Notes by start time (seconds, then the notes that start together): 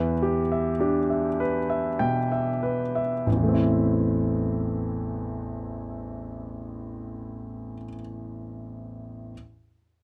Already playing: E2 B4 E5
0.22 G4
0.52 E5
0.80 D4 G4
1.10 E5
1.40 B4
1.70 E5
1.99 B2 G5
2.32 E5
2.63 B4
2.95 E5
3.26 A1
3.32 E2
3.37 E3
3.43 A3
3.48 C4
3.54 E4